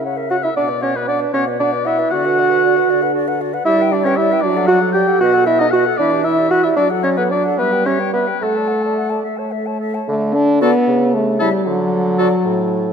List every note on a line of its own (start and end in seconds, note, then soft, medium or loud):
0.00 0.47 C#3 medium
0.04 0.18 C#5 soft
0.04 0.19 F#5 medium
0.17 0.32 A#4 soft
0.17 0.32 E5 soft
0.30 0.37 F#4 medium
0.30 0.44 C#5 soft
0.30 0.45 F#5 medium
0.43 0.50 E4 medium
0.43 0.55 A#4 soft
0.43 0.56 E5 medium
0.43 0.54 E5 soft
0.54 1.25 B2 medium
0.54 0.69 D4 medium
0.54 0.71 D5 medium
0.54 0.84 D5 medium
0.54 0.70 F#5 medium
0.68 0.84 B4 soft
0.68 0.82 D5 soft
0.81 0.95 C#4 medium
0.81 0.98 C#5 medium
0.81 0.97 D5 medium
0.81 0.96 F#5 soft
0.95 1.09 B3 medium
0.95 1.07 B4 soft
0.95 1.07 B4 medium
0.95 1.06 D5 soft
1.07 1.33 D4 medium
1.07 1.22 D5 medium
1.07 1.20 D5 medium
1.07 1.21 F#5 soft
1.20 1.35 B4 soft
1.20 1.36 D5 soft
1.33 2.03 B2 medium
1.33 1.46 C#4 medium
1.33 1.45 C#5 medium
1.33 1.49 D5 medium
1.33 1.50 F#5 medium
1.48 1.59 B4 medium
1.48 1.61 D5 medium
1.60 1.71 D4 medium
1.60 1.74 D5 medium
1.60 1.88 D5 medium
1.60 1.76 F#5 medium
1.72 1.88 B4 medium
1.72 1.87 D5 medium
1.85 2.14 E4 medium
1.85 2.00 D5 medium
1.85 2.10 E5 medium
1.85 2.01 F#5 medium
1.99 2.12 B4 medium
1.99 2.12 D5 medium
2.10 2.80 D3 medium
2.10 3.14 F#4 loud
2.10 2.28 F#4 medium
2.10 2.27 D5 medium
2.10 3.11 F#5 medium
2.25 2.41 B4 medium
2.25 2.41 F#5 medium
2.39 2.52 F#4 medium
2.39 2.53 D5 medium
2.51 2.63 B4 medium
2.51 2.63 F#5 medium
2.64 2.78 F#4 medium
2.64 2.78 D5 medium
2.77 2.91 B4 medium
2.77 2.92 F#5 medium
2.89 3.57 D3 medium
2.89 3.04 F#4 medium
2.89 3.04 D5 medium
3.02 3.14 B4 medium
3.02 3.14 F#5 medium
3.14 3.28 F#4 medium
3.14 3.29 D5 medium
3.27 3.41 B4 medium
3.27 3.43 F#5 medium
3.40 3.55 F#4 medium
3.40 3.55 D5 medium
3.53 3.65 B4 medium
3.53 3.66 F#5 medium
3.65 4.34 G3 medium
3.65 3.93 E4 loud
3.65 3.80 G4 medium
3.65 3.83 D5 medium
3.65 3.93 E5 loud
3.79 3.93 B4 medium
3.79 3.96 G5 medium
3.92 4.04 D4 medium
3.92 4.07 G4 medium
3.92 4.06 D5 medium
3.92 4.08 D5 medium
4.04 4.19 C#4 medium
4.04 4.17 B4 medium
4.04 4.18 C#5 medium
4.04 4.18 G5 medium
4.16 4.44 E4 loud
4.16 4.32 G4 medium
4.16 4.34 D5 medium
4.16 4.42 E5 medium
4.30 4.43 B4 medium
4.30 4.44 G5 medium
4.41 5.03 F#3 medium
4.41 4.68 D4 medium
4.41 4.57 F#4 medium
4.41 4.68 D5 medium
4.41 4.58 D5 medium
4.56 4.70 A4 medium
4.56 4.71 F#5 medium
4.66 4.80 F#4 loud
4.66 4.83 F#4 medium
4.66 4.83 D5 medium
4.66 4.91 F#5 medium
4.81 4.94 A4 medium
4.81 4.93 F#5 medium
4.92 5.09 F#4 medium
4.92 5.20 G4 loud
4.92 5.09 D5 medium
4.92 5.21 G5 medium
5.07 5.20 A4 medium
5.07 5.21 F#5 medium
5.20 5.90 B2 medium
5.20 5.46 F#4 loud
5.20 5.36 B4 medium
5.20 5.35 D#5 medium
5.20 5.46 F#5 medium
5.33 5.48 A4 medium
5.33 5.48 F#5 medium
5.46 5.60 E4 loud
5.46 5.62 B4 medium
5.46 5.60 D#5 medium
5.46 5.61 E5 medium
5.59 5.67 D#4 medium
5.59 5.73 A4 medium
5.59 5.73 D#5 medium
5.59 5.72 F#5 medium
5.71 5.85 F#4 medium
5.71 5.89 B4 medium
5.71 5.87 D#5 medium
5.71 5.98 F#5 medium
5.86 5.99 A4 medium
5.86 5.99 F#5 medium
5.97 6.68 E3 medium
5.97 6.26 D4 loud
5.97 6.14 E4 medium
5.97 6.23 D5 medium
5.97 6.12 E5 medium
6.11 6.26 G4 medium
6.11 6.25 D5 medium
6.24 6.50 E4 medium
6.24 6.41 E4 medium
6.24 6.53 E5 medium
6.24 6.40 E5 medium
6.38 6.51 G4 medium
6.38 6.50 D5 medium
6.51 6.66 E4 medium
6.51 6.66 F#4 loud
6.51 6.65 E5 medium
6.51 6.62 F#5 medium
6.63 6.76 E4 medium
6.63 6.77 G4 medium
6.63 6.77 D5 medium
6.63 6.69 E5 medium
6.76 7.49 F#3 medium
6.76 6.89 D4 loud
6.76 6.93 F#4 medium
6.76 6.89 D5 medium
6.76 6.92 D5 medium
6.90 7.07 A4 medium
6.90 7.06 F#5 medium
7.03 7.19 C#4 medium
7.03 7.20 F#4 medium
7.03 7.09 C#5 medium
7.03 7.19 D5 medium
7.17 7.32 B3 medium
7.17 7.32 A4 medium
7.17 7.23 B4 medium
7.17 7.31 F#5 medium
7.31 7.60 D4 medium
7.31 7.48 F#4 medium
7.31 7.43 D5 medium
7.31 7.45 D5 medium
7.44 7.59 A4 soft
7.44 7.57 F#5 medium
7.58 8.32 G3 medium
7.58 7.86 B3 medium
7.58 7.75 G4 medium
7.58 7.88 B4 medium
7.58 7.73 E5 medium
7.72 7.88 B4 medium
7.72 7.87 G5 medium
7.86 7.99 C#4 medium
7.86 8.01 G4 medium
7.86 8.13 C#5 medium
7.86 8.01 E5 soft
8.00 8.13 B4 soft
8.00 8.14 G5 medium
8.13 8.26 B3 medium
8.13 8.30 G4 soft
8.13 8.44 B4 medium
8.13 8.29 E5 soft
8.28 8.42 B4 soft
8.28 8.41 G5 soft
8.42 9.23 A3 medium
8.42 9.16 A3 medium
8.42 9.25 A4 medium
8.42 8.59 A4 medium
8.42 8.57 F#5 soft
8.55 8.73 D5 soft
8.55 8.69 A5 soft
8.68 8.84 F#5 soft
8.72 8.87 A4 soft
8.82 8.99 D5 soft
8.82 8.96 A5 soft
8.97 9.13 A4 soft
8.97 9.11 F#5 soft
9.10 9.24 D5 soft
9.10 9.22 A5 soft
9.23 9.99 A3 medium
9.23 9.40 A4 medium
9.23 9.38 E5 soft
9.37 9.54 C#5 soft
9.37 9.53 A5 soft
9.51 9.69 A4 soft
9.51 9.68 E5 soft
9.66 9.79 C#5 soft
9.66 9.80 A5 soft
9.80 9.96 A4 soft
9.80 9.96 E5 soft
9.94 10.08 C#5 soft
9.94 10.08 A5 soft
10.08 10.75 D3 medium
10.08 10.36 A3 medium
10.34 10.61 D4 loud
10.61 11.16 B3 loud
10.61 10.70 F#4 medium
10.61 10.71 A4 medium
10.61 10.73 D5 medium
10.87 11.54 C#3 medium
11.14 11.41 A3 medium
11.39 11.68 G3 medium
11.39 11.50 E4 medium
11.39 11.49 A4 medium
11.39 11.53 E5 medium
11.66 12.32 D3 medium
11.66 12.93 F#3 medium
12.18 12.28 F#4 medium
12.18 12.28 A4 medium
12.18 12.31 D5 medium
12.45 12.93 A2 medium